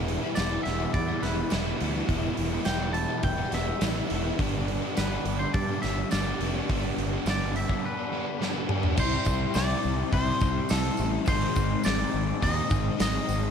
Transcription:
Already playing: E1 E2 B2 E3 G3 B3 E4
0.08 open hi-hat
0.21 E3 G3 B3 E4
0.34 E2 B2 E3 G3 B3 E4 D5, snare, open hi-hat, tambourine
0.38 E1
0.49 G3 B3 E4
0.63 E1 E3 G3 B3 E4 E5, muted overdriven electric guitar stroke, snare, open hi-hat
0.78 G3 B3 E4, muted overdriven electric guitar stroke
0.93 E2 E3 G3 B3 E4 D5, kick, open hi-hat
1.07 G3 B3 E4
1.22 E1 E3 G3 B3 E4 B4, snare, open hi-hat
1.38 muted overdriven electric guitar stroke
1.50 E1 E2 B2 E3 G3 B3 E4, snare, open hi-hat, tambourine
1.64 G3 B3 E4
1.69 E3
1.80 D2 E3 G3 B3 E4, open hi-hat
1.94 E3 G3 B3 E4
2.07 E1 E2 B2 E3 G3 B3 E4, kick, open hi-hat
2.37 E1, open hi-hat
2.50 G3 B3 E4
2.54 E3
2.65 E1 E2 B2 E3 G3 B3 E4 G5, snare, open hi-hat, tambourine
2.79 G3 B3 E4
2.93 E3 G3 B3 E4 A5, muted overdriven electric guitar stroke, open hi-hat
3.08 G3 B3 E4, muted overdriven electric guitar stroke
3.22 E1 E3 G3 B3 E4 G5, kick, open hi-hat
3.37 G3 B3 E4
3.51 E1 E3 G3 B3 E4 E5, snare, open hi-hat
3.68 muted overdriven electric guitar stroke
3.80 A1 E2 B2 E3 G3 B3 E4, snare, open hi-hat, tambourine
3.95 E3 G3 B3 E4
4.09 E1 E3 G3 B3 E4, open hi-hat
4.24 E3 G3 B3 E4
4.38 G1 G2 D3 G3 B3 D4 G4, kick, open hi-hat
4.68 open hi-hat
4.81 G3 B3 D4 G4
4.95 G1 G2 D3 G3 B3 D4 G4 B4, snare, open hi-hat, tambourine
5.11 G3 B3 D4
5.24 G1 G2 D3 G3 B3 D4 G4, muted overdriven electric guitar stroke, open hi-hat
5.39 G3 B3 D4 C5, muted overdriven electric guitar stroke
5.53 G2 D3 G3 B3 D4 D5, kick, open hi-hat
5.67 G3 B3 D4
5.82 G1 D3 G3 B3 D4 G4 E5, snare, open hi-hat
5.98 muted overdriven electric guitar stroke
6.10 G1 G2 D3 G3 B3 D4 G4 D5, snare, open hi-hat, tambourine
6.24 G3 B3 D4 G4
6.39 F1 G2 D3 G3 B3 D4 G4, open hi-hat
6.54 G3 B3 D4 G4
6.68 G1 G2 D3 G3 B3 D4, kick, open hi-hat
6.72 G4
6.98 G1, open hi-hat
7.11 G3 B3 D4 G4
7.25 G1 G2 D3 G3 B3 D4, snare, open hi-hat, tambourine
7.30 G4 D5
7.39 G3 B3 D4
7.54 G2 D3 G3 B3 D4 E5, muted overdriven electric guitar stroke, open hi-hat
7.58 G4
7.68 G3 B3 D4, muted overdriven electric guitar stroke, kick
7.83 G2 D3 G3 B3 D4 B4
7.97 G3 B3 D4
8.10 D3 G3 B3 D4
8.15 G4
8.27 muted overdriven electric guitar stroke
8.39 G2 D3 G3 B3 D4 G4, snare
8.54 G3 B3 D4 G4
8.67 G2 D3 G3 B3 D4, mid tom
8.71 G4
8.82 G3 B3 D4 G4, floor tom
8.97 C2 C3 G3 C4 E4 C5, kick, crash, tambourine
9.12 tambourine
9.25 C2, kick, tambourine
9.54 C2 C3 G3 C4 E4 D5, snare, open hi-hat, tambourine
9.83 C2, tambourine
10.11 C2 C3 G3 C4 E4 C5, kick, open hi-hat
10.40 C2 G3 C4 E4, kick, tambourine
10.69 C2 C3 G3 C4 E4 A4, snare, open hi-hat, tambourine
10.97 A1, tambourine
11.26 G#1 G#2 D#3 G#3 C4 D#4 C5, kick, open hi-hat, tambourine
11.41 tambourine
11.56 G#1, kick, tambourine
11.83 G#1 D#3 G#3 C4 D#4 D5, snare, open hi-hat, tambourine
12.13 G#1, tambourine
12.40 D#2 G#2 D#3 G#3 C4 D#4 D#5, kick, open hi-hat
12.69 G#1 G#3 C4 D#4, kick, tambourine
12.97 G#1 D#3 G#3 C4 D#4, snare, open hi-hat, tambourine
13.02 D#5
13.29 G#1, tambourine

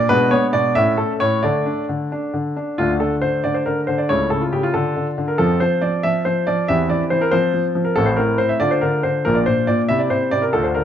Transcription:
0.09 B2 G#3 D4 B4
0.31 B3 C#5
0.53 B2 D5
0.75 A2 A3 C#4 E5
0.97 A3 A4
1.20 A2 C#5
1.43 D3 A3 D4 D5
1.66 D4
1.89 D3
2.12 D4
2.34 D3
2.57 D4
2.78 D2 D3 A3 D4 F4
3.00 D3 A4
3.22 D3 C5
3.44 D3 D5
3.54 C5
3.66 D3 A#4
3.87 D3 C5
3.98 D5
4.09 C#2 C#3 A3 E4 C#5
4.30 C#3 A4
4.41 F4
4.53 C#3 G4
4.63 F4
4.74 D3 D4 F4 A4
4.96 D3
5.18 D3
5.28 A#4
5.38 F2 F3 C4 F4 A4
5.60 F3 C5
5.82 F3 D5
6.03 F3 E5
6.25 F3 C5
6.47 F3 D5
6.68 E2 E3 C4 G4 E5
6.90 E3 D5
7.10 E3 C5
7.21 A#4
7.31 F3 C4 F4 C5
7.54 F3
7.75 F3
7.85 A#4
7.96 A1 A2 C4 E4 A4
8.06 C5
8.16 A2 A#4
8.38 A2 C5
8.49 E5
8.60 D3 D4 F4 D5
8.71 C5
8.81 D3 A#4
9.03 D3 C5
9.25 A#1 A#2 D4 F4 A#4
9.35 D5
9.46 A#2 C5
9.67 A#2 D5
9.88 C3 E4 E5
9.99 D5
10.10 C3 C5
10.31 C3 D5
10.42 A#4
10.53 D2 D3 D4 F4 A4
10.63 C5
10.75 D3 A#4

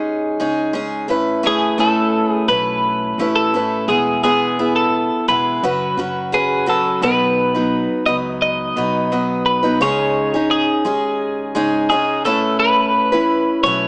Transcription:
Already playing: D#2 G#3 C#4 D#4 G#4
0.39 C#2 G#3 C#4 D#4 G#4
0.73 G#3 C#4 D#4 G#4
1.08 A1 A3 C#4 E4 B4
1.43 A3 C#4 E4 G#4 B4
1.78 A3 C#4 E4 A4 B4
2.30 G#4
2.48 B1 A3 C#4 E4 B4
3.18 A1 A3 C#4 E4 B4
3.36 A4
3.54 A3 C#4 E4 B4
3.88 E1 G#3 B3 E4 G#4
4.23 E3 G#3 B3 E4 G#4
4.59 B3 E4
4.76 A4
5.28 E1 G#3 B3 E4 G#4 B4
5.63 F#1 F#3 C#4 F#4 B4
5.97 F#1 F#3 C#4 F#4 B4
6.32 F#3 C#4 F#4 G#4 B4
6.66 F#3 C#4 F#4 A4 B4
7.01 B1 B2 D#3 F#3 B3 D#4 B4
7.55 F#3 B3 D#4 B4
8.06 C#2 F#3 B3 D#4 B4 D#5
8.42 D#5
8.76 B1 F#3 B3 D#4 B4
9.12 F#3 B3 D#4 B4
9.46 B4
9.63 F#3 B3 D#4 B4
9.80 C#2 C#3 G#3 C#4 D#4 G#4 C#5
10.34 C#4 D#4 G#4
10.51 G#4
10.85 D#2 G#3 C#4 D#4 G#4
11.55 C#2 G#3 C#4 D#4 G#4
11.90 G#3 C#4 D#4 G#4
12.25 A1 A3 C#4 E4 A4 B4
12.60 B4
13.12 C#4 E4 B4
13.64 B1 A3 C#4 E4 B4 C#5

